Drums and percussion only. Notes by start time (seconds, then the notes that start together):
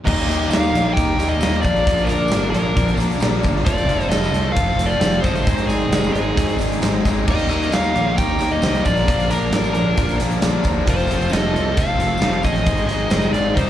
0.05 kick, crash, tambourine
0.17 closed hi-hat, tambourine
0.29 closed hi-hat, tambourine
0.42 closed hi-hat
0.51 snare, closed hi-hat, tambourine
0.63 tambourine
0.75 closed hi-hat, tambourine
0.97 kick, closed hi-hat
1.09 tambourine
1.19 closed hi-hat, tambourine
1.41 snare, closed hi-hat, tambourine
1.54 closed hi-hat
1.63 kick, closed hi-hat, tambourine
1.76 closed hi-hat
1.85 kick, closed hi-hat, tambourine
1.95 closed hi-hat, tambourine
2.07 closed hi-hat, tambourine
2.19 tambourine
2.28 snare, closed hi-hat, tambourine
2.39 tambourine
2.52 closed hi-hat, tambourine
2.77 kick, closed hi-hat
2.85 closed hi-hat, tambourine
2.97 closed hi-hat, tambourine
3.09 closed hi-hat, tambourine
3.20 snare, closed hi-hat, tambourine
3.34 snare
3.43 kick, closed hi-hat, tambourine
3.56 snare
3.65 kick, closed hi-hat, tambourine
3.77 closed hi-hat, tambourine
3.89 closed hi-hat
4.00 closed hi-hat, tambourine
4.11 snare, closed hi-hat, tambourine
4.24 tambourine
4.34 closed hi-hat, tambourine
4.56 kick, closed hi-hat
4.69 tambourine
4.79 closed hi-hat, tambourine
4.91 tambourine
5.01 snare, closed hi-hat, tambourine
5.12 closed hi-hat, tambourine
5.24 kick, closed hi-hat, tambourine
5.36 closed hi-hat
5.47 kick, closed hi-hat, tambourine
5.58 closed hi-hat, tambourine
5.69 closed hi-hat, tambourine
5.81 tambourine
5.92 snare, closed hi-hat, tambourine
6.04 tambourine
6.15 closed hi-hat, tambourine
6.37 kick, closed hi-hat
6.48 closed hi-hat, tambourine
6.59 closed hi-hat, tambourine
6.72 closed hi-hat
6.82 snare, closed hi-hat, tambourine
6.95 snare
7.05 kick, closed hi-hat, tambourine
7.28 kick, tambourine, crash
7.38 closed hi-hat, tambourine
7.49 closed hi-hat, tambourine
7.60 closed hi-hat, tambourine
7.72 snare, closed hi-hat, tambourine
7.84 tambourine
7.96 closed hi-hat
8.18 kick, closed hi-hat
8.28 tambourine
8.39 closed hi-hat, tambourine
8.62 snare, closed hi-hat, tambourine
8.75 snare, closed hi-hat
8.85 kick, closed hi-hat, tambourine
8.96 snare, closed hi-hat
9.08 kick, closed hi-hat, tambourine
9.19 closed hi-hat, tambourine
9.30 closed hi-hat, tambourine
9.41 tambourine
9.53 snare, closed hi-hat, tambourine
9.64 tambourine
9.74 closed hi-hat, tambourine
9.97 kick, closed hi-hat
10.09 closed hi-hat, tambourine
10.20 closed hi-hat, tambourine
10.31 closed hi-hat, tambourine
10.42 snare, closed hi-hat, tambourine
10.64 kick, closed hi-hat, tambourine
10.87 kick, closed hi-hat
10.96 closed hi-hat, tambourine
11.07 closed hi-hat, tambourine
11.19 closed hi-hat, tambourine
11.30 snare, closed hi-hat, tambourine
11.40 tambourine
11.53 closed hi-hat, tambourine
11.77 kick, closed hi-hat
11.86 tambourine
12.00 closed hi-hat
12.07 tambourine
12.18 tambourine
12.22 snare, closed hi-hat
12.33 closed hi-hat
12.43 kick, closed hi-hat, tambourine
12.56 snare, closed hi-hat
12.66 kick, closed hi-hat, tambourine
12.77 closed hi-hat
12.89 closed hi-hat
13.10 snare, closed hi-hat, tambourine
13.22 tambourine
13.33 closed hi-hat, tambourine
13.45 tambourine
13.56 kick, closed hi-hat, tambourine